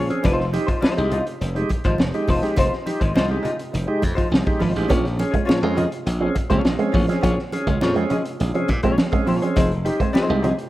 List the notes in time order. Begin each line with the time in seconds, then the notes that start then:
Already playing: A#2 F3
0.10 C4 C#4 G#4, closed hi-hat
0.23 F1 F3 G#3 D#4 F4 C5, kick, closed hi-hat, muted conga
0.40 snare
0.53 D#4 G4, muted hollow-body jazz guitar stroke, closed hi-hat, muted conga
0.67 G#3 D#4 F4 C5, kick, closed hi-hat
0.81 F3 G#3 D#4 F4 C5, muted slap bass stroke, snare, high conga
0.96 C2 G#3 D#4 G4, muted hollow-body jazz guitar stroke, closed hi-hat
1.10 G#3 D#4 F4 G4 D#5, closed hi-hat, low conga
1.27 muted hollow-body jazz guitar stroke, closed hi-hat
1.41 F1, muted hollow-body jazz guitar stroke, closed hi-hat, muted conga
1.55 G#3 D#4 G4, muted hollow-body jazz guitar stroke, closed hi-hat
1.69 kick, closed hi-hat, muted conga
1.84 G#1 F3 G#3 D#4 F4 C5, kick, closed hi-hat
1.98 F1, muted hollow-body jazz guitar stroke, snare, high conga
2.14 G#3 D#4 G4, muted hollow-body jazz guitar stroke, closed hi-hat
2.28 E1 F3 G#3 D#4 F4 C5, kick, open hi-hat, high conga
2.42 G#3 D#4 G4, muted hollow-body jazz guitar stroke, snare, closed hi-hat
2.56 F1 F3 G#3 D#4 F4 C5, kick, closed hi-hat, muted conga
2.73 snare
2.86 D#4 G4, muted hollow-body jazz guitar stroke, closed hi-hat, muted conga
3.00 G#1 G#3 D#4 F4 C5, kick, closed hi-hat
3.14 C2 F3 G#3 D#4 F4 C5, snare, high conga
3.28 G#3 D#4 G4, muted hollow-body jazz guitar stroke
3.43 G#3 D#4 F4 G4 D#5, closed hi-hat, low conga
3.59 muted hollow-body jazz guitar stroke, closed hi-hat
3.72 F1, muted hollow-body jazz guitar stroke, closed hi-hat, muted conga, low conga
3.86 G#3 D#4 G4, muted hollow-body jazz guitar stroke
4.02 F2, kick, closed hi-hat, muted conga, low conga
4.15 F3 G#3 D#4 F4 C5, kick, closed hi-hat
4.29 C2, muted hollow-body jazz guitar stroke, high conga
4.34 snare
4.44 G#3 D#4 G4, muted hollow-body jazz guitar stroke, kick, high conga
4.59 G#1 F3 G#3 D#4 F4 C5, open hi-hat, high conga
4.74 A1 G#3 D#4 G4, muted hollow-body jazz guitar stroke, snare, closed hi-hat
4.88 A#1 A#2 F3 A#3 C#4 F4 G#4 C#5, kick, closed hi-hat, muted conga
5.05 snare, closed hi-hat
5.17 C#4 G#4, muted hollow-body jazz guitar stroke, muted clean electric guitar stroke, closed hi-hat, muted conga
5.31 G#3 C#4 F4 G#4 C#5, kick, closed hi-hat
5.45 A#2 C#4 F4 G#4 C#5, muted clean electric guitar stroke, muted slap bass stroke, high conga
5.49 F3, snare
5.61 F2 G#3 C4 C#4 G#4, muted hollow-body jazz guitar stroke
5.75 F3 C#4 F4 G#4 D#5, closed hi-hat, low conga
5.91 muted hollow-body jazz guitar stroke, closed hi-hat
6.06 A#1, muted hollow-body jazz guitar stroke, closed hi-hat, muted conga
6.21 F3 C4 C#4 G#4, muted hollow-body jazz guitar stroke
6.35 muted clean electric guitar stroke, kick, closed hi-hat, muted conga
6.50 C#2 A#2 F3 G#3 C#4 F4 G#4 C#5, kick, closed hi-hat
6.64 A#1, muted hollow-body jazz guitar stroke, snare, high conga
6.79 G#3 C4 C#4 G#4, muted hollow-body jazz guitar stroke, closed hi-hat
6.92 A1 A#2 F3 C#4 F4 G#4 C#5, muted clean electric guitar stroke, kick, open hi-hat, high conga
7.07 F3 C4 C#4 G#4, muted hollow-body jazz guitar stroke, snare, closed hi-hat
7.21 A#1 A#2 F3 A#3 C#4 F4 G#4 C#5, kick, closed hi-hat, muted conga
7.39 snare
7.52 C#4 G#4, muted hollow-body jazz guitar stroke, muted clean electric guitar stroke, closed hi-hat, muted conga
7.67 C#2 G#3 C#4 F4 G#4 C#5, kick, closed hi-hat
7.81 F2 A#2 F3 C#4 F4 G#4 C#5, muted clean electric guitar stroke, snare, high conga
7.95 G#3 C4 C#4 G#4, muted hollow-body jazz guitar stroke, closed hi-hat
8.10 F3 C#4 F4 G#4 D#5, closed hi-hat, low conga
8.25 muted hollow-body jazz guitar stroke, closed hi-hat
8.39 A#1, muted hollow-body jazz guitar stroke, closed hi-hat, muted conga, low conga
8.54 F3 C4 C#4 G#4, muted hollow-body jazz guitar stroke, closed hi-hat
8.68 A#2, muted clean electric guitar stroke, kick, closed hi-hat, muted conga, low conga
8.83 A#2 F3 G#3 C#4 F4 G#4 C#5, kick, closed hi-hat
8.98 muted hollow-body jazz guitar stroke, snare, high conga
9.12 G#3 C4 C#4 G#4, muted hollow-body jazz guitar stroke, kick, closed hi-hat
9.26 A#2 F3 C#4 F4 G#4 C#5, muted clean electric guitar stroke, open hi-hat, high conga
9.42 F3 C4 C#4 G#4, muted hollow-body jazz guitar stroke, closed hi-hat
9.56 F1 F3 C4 D#4 G#4 C5, kick, closed hi-hat, muted conga
9.72 closed hi-hat
9.85 D#4 G4, muted clean electric guitar stroke, muted hollow-body jazz guitar stroke, closed hi-hat, muted conga
10.00 G#3 C4 D#4 G#4 C5, kick, closed hi-hat
10.13 F3 C4 D#4 G#4 C5, muted slap bass stroke, muted clean electric guitar stroke, snare, high conga
10.28 C2 G#3 D#4 G4, muted hollow-body jazz guitar stroke
10.42 F3 C4 D#4 G4 G#4 D#5, closed hi-hat, low conga
10.57 muted hollow-body jazz guitar stroke, closed hi-hat